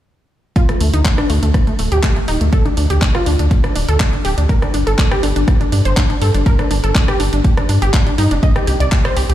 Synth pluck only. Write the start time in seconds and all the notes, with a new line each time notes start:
0.56 F4
0.69 A3
0.81 A3
0.94 D#4
1.05 A3
1.18 D4
1.30 A3
1.43 A3
1.67 A3
1.79 A3
1.92 G4
2.03 A3
2.16 A3
2.28 D#4
2.41 A3
2.53 A4
2.66 D4
2.77 D4
2.90 G4
3.02 D4
3.15 F4
3.26 D4
3.39 D4
3.64 D4
3.76 D4
3.89 A4
4.00 D4
4.13 D4
4.25 G4
4.38 D4
4.49 A#4
4.62 D4
4.74 D4
4.87 A4
4.98 D4
5.11 G4
5.23 D4
5.36 D4
5.61 D4
5.72 D4
5.85 C5
5.97 D4
6.10 D4
6.22 A4
6.34 D4
6.46 A#4
6.59 D4
6.71 D4
6.84 A4
6.95 D4
7.08 G4
7.20 D4
7.33 D4
7.57 D4
7.69 D4
7.82 G4
7.94 D4
8.07 D4
8.18 D#4
8.31 D4
8.43 D#5
8.56 G4
8.67 G4
8.80 D5
8.92 G4
9.05 C5
9.17 G4
9.29 G4